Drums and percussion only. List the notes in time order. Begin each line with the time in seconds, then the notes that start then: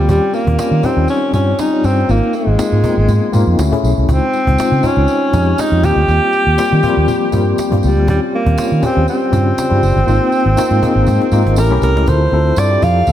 0.09 cajon bass, tambourine
0.33 cajon slap, tambourine
0.47 cajon bass
0.59 cajon slap, tambourine
0.71 cajon slap
0.83 cajon bass, tambourine
1.08 tambourine
1.22 cajon slap
1.33 cajon bass, tambourine
1.59 cajon slap, tambourine
1.72 cajon slap
1.84 tambourine
1.97 cajon slap
2.08 cajon slap, tambourine
2.22 cajon slap
2.33 cajon slap, tambourine
2.47 cajon slap
2.59 cajon slap, tambourine
2.71 cajon slap
2.84 cajon bass, tambourine
2.97 cajon slap
3.08 cajon bass, tambourine
3.22 cajon slap
3.33 cajon bass, tambourine
3.48 cajon slap
3.59 cajon slap, tambourine
3.73 cajon bass
3.84 tambourine
3.97 cajon slap
4.09 cajon bass, tambourine
4.23 cajon slap
4.33 cajon slap, tambourine
4.47 cajon bass
4.58 cajon slap, tambourine
4.72 cajon slap
4.83 cajon bass, tambourine
5.08 cajon slap, tambourine
5.22 cajon slap
5.33 cajon bass, tambourine
5.48 cajon slap
5.58 cajon slap, tambourine
5.72 cajon slap
5.83 cajon bass, tambourine
6.08 tambourine
6.33 cajon slap, tambourine
6.47 cajon slap
6.58 cajon slap, tambourine
6.71 cajon slap
6.83 cajon bass, tambourine
6.97 cajon slap
7.08 cajon bass, tambourine
7.22 cajon slap
7.32 cajon bass, tambourine
7.48 cajon slap
7.58 cajon slap, tambourine
7.72 cajon bass
7.83 tambourine
7.97 cajon slap
8.08 cajon bass, tambourine
8.21 cajon slap
8.33 cajon slap
8.46 cajon bass
8.58 cajon slap, tambourine
8.71 cajon slap
8.83 cajon bass, tambourine
9.08 tambourine
9.21 cajon slap
9.33 cajon bass, tambourine
9.58 cajon slap, tambourine
9.72 cajon slap
9.83 tambourine
9.96 cajon slap
10.08 tambourine
10.32 cajon slap, tambourine
10.46 cajon slap
10.57 cajon slap, tambourine
10.70 cajon slap
10.82 cajon bass, tambourine
10.96 cajon slap
11.07 cajon bass, cajon slap, tambourine
11.22 cajon slap
11.32 cajon slap, tambourine
11.47 cajon slap
11.56 cajon slap, tambourine
11.82 cajon slap, tambourine
11.97 cajon slap
12.06 cajon bass, tambourine
12.22 cajon slap
12.33 cajon slap
12.46 cajon slap
12.56 cajon slap, tambourine
12.71 cajon slap
12.82 cajon bass, tambourine
12.96 cajon slap
13.07 cajon bass, tambourine